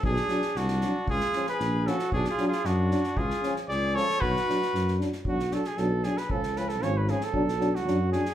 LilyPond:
<<
  \new Staff \with { instrumentName = "Flugelhorn" } { \time 2/4 \tempo 4 = 115 d'4 d'4 | eis'8. gis'8. fis'8 | \tuplet 3/2 { d'8 eis'8 eis'8 } d'4 | eis'8. r16 gis'8 a'8 |
fis'4. r8 | fis'8 a'16 gis'16 a'8 gis'16 b'16 | a'8 b'16 a'16 cis''16 b'16 gis'16 a'16~ | a'8. fis'8. gis'8 | }
  \new Staff \with { instrumentName = "Trumpet" } { \time 2/4 gis'4 fis'4 | gis'8. b'8. a'8 | \tuplet 3/2 { gis'8 gis'8 gis'8 } fis'4 | gis'8. r16 d''8 cis''8 |
b'4. r8 | r2 | r2 | r2 | }
  \new Staff \with { instrumentName = "Euphonium" } { \time 2/4 r8 d'8 r8 d'8 | r8 cis'8 r8 cis'8 | r8 d'8 r8 d'8 | r8 cis'8 r8 cis'8 |
r8 d'8 r8 d'8 | d'8 d'8 d'8 d'8 | cis'8 cis'8 cis'8 cis'8 | d'8 d'8 d'8 d'8 | }
  \new Staff \with { instrumentName = "Euphonium" } { \clef bass \time 2/4 r8 fis8 r8 fis8 | r8 eis8 r8 eis8 | r8 fis8 r8 fis8 | r8 eis8 r8 eis8 |
r8 fis8 r8 fis8 | fis8 fis8 fis8 fis8 | eis8 eis8 eis8 eis8 | fis8 fis8 fis8 fis8 | }
  \new Staff \with { instrumentName = "Tuba" } { \clef bass \time 2/4 b,,8 r8 c,4 | cis,8 r8 ais,,4 | b,,8 r8 fis,4 | cis,8 r8 cis,4 |
b,,8 r8 fis,4 | b,,4 b,,4 | cis,4 gis,,4 | b,,4 fis,4 | }
  \new DrumStaff \with { instrumentName = "Drums" } \drummode { \time 2/4 bd16 sn16 sn16 sn16 sn16 sn16 sn8 | bd16 sn16 sn16 sn16 sn8 sn16 sn16 | bd16 sn16 sn16 sn16 sn8 sn16 sn16 | bd16 sn16 sn16 sn16 sn8 sn16 sn16 |
bd16 sn16 sn16 sn16 sn16 sn16 sn16 sn16 | bd16 sn16 sn16 sn16 sn8 sn16 sn16 | bd16 sn16 sn16 sn16 sn8 sn16 sn16 | bd16 sn16 sn16 sn16 sn8 sn16 sn16 | }
>>